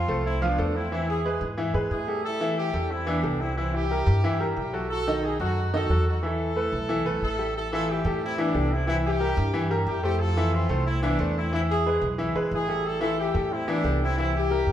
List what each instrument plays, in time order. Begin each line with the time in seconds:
Already playing: horn section C4 F4
0.08 upright bass C2, grand piano A3 A4 C5
0.25 horn section C4 E4
0.42 grand piano F3 F4 F5, horn section B3 D4
0.58 upright bass E2, grand piano A3 A4 C5
0.75 horn section C4 E4
0.92 grand piano E3 E4 E5, horn section C4 E4
1.09 horn section E4 G#4
1.25 grand piano G#3 G#4 B4
1.41 upright bass G#2
1.57 grand piano E3 E4 E5
1.74 upright bass G#2, grand piano G#3 G#4 B4
1.91 upright bass A2, horn section E4 G#4
2.07 grand piano G3 G4 A4
2.24 horn section E4 A4
2.40 grand piano E3 E4 E5
2.57 horn section E4 G4
2.73 upright bass E2, grand piano G3 G4 A4
2.90 horn section C4 E4
3.07 grand piano E3 E4 E5, horn section B3 D4
3.23 upright bass C2, grand piano G3 G4 A4
3.41 horn section C4 E4
3.57 grand piano E3 E4 E5, horn section C4 E4
3.74 horn section E4 G4
3.91 grand piano G3 G4 A#4
4.07 upright bass G2
4.24 grand piano E3 E4 E5
4.40 grand piano G3 G4 A#4
4.57 upright bass B1, horn section E4 G4
4.73 grand piano F#3 F#4 A4
4.91 horn section F#4 A4
5.07 grand piano D#3 D#4 D#5
5.24 horn section D#4 G#4
5.40 upright bass F#2, grand piano F#3 F#4 A4, horn section D#4 F#4
5.74 grand piano D#3 D#4 D#5, horn section F#4 A4
5.90 upright bass E2, grand piano F#3 F#4 A4
6.08 horn section D#4 F#4
6.23 grand piano E3 E4 E5, horn section E4 A4
6.56 grand piano A3 A4 B4
6.72 upright bass B1
6.89 grand piano E3 E4 E5
7.06 upright bass B1, grand piano A3 A4 B4
7.22 upright bass A1, horn section E4 A4
7.38 grand piano G3 G4 A4
7.56 horn section E4 A4
7.72 grand piano E3 E4 E5, horn section F4 A4
7.90 horn section E4 G4
8.05 upright bass A2, grand piano G3 G4 A4
8.24 horn section C4 E4
8.38 grand piano E3 E4 E5, horn section B3 D4
8.54 upright bass C2, grand piano G3 G4 A4
8.73 horn section C4 E4
8.87 grand piano E3 E4 E5, horn section C4 E4
9.06 horn section E4 G4
9.20 grand piano G3 G4 A#4
9.37 upright bass G2
9.53 grand piano E3 E4 E5
9.70 grand piano G3 G4 A#4
9.87 upright bass F2, horn section E4 G4
10.03 grand piano A3 A4 C5, horn section E4 G4
10.20 horn section F4 A4
10.37 grand piano E3 E4 E5
10.54 horn section C4 F4
10.69 upright bass C2, grand piano A3 A4 C5
10.87 horn section C4 E4
11.03 grand piano E3 E4 E5, horn section B3 D4
11.19 upright bass E2, grand piano A3 A4 C5
11.37 horn section C4 E4
11.52 grand piano E3 E4 E5, horn section C4 E4
11.70 horn section E4 G#4
11.86 grand piano G#3 G#4 B4
12.02 upright bass B1
12.18 grand piano E3 E4 E5
12.35 upright bass B1, grand piano G#3 G#4 B4
12.51 upright bass A1, horn section E4 G#4
12.68 grand piano G3 G4 A4
12.86 horn section E4 A4
13.00 grand piano E3 E4 E5, horn section F4 A4
13.19 horn section E4 G4
13.34 upright bass A2, grand piano G3 G4 A4
13.52 horn section C4 E4
13.68 grand piano E3 E4 E5, horn section B3 D4
13.84 upright bass C2, grand piano G3 G4 A4
14.03 horn section C4 E4
14.17 grand piano E3 E4 E5, horn section C4 E4
14.36 horn section E4 G4
14.50 grand piano G3 G4 A#4
14.67 upright bass G2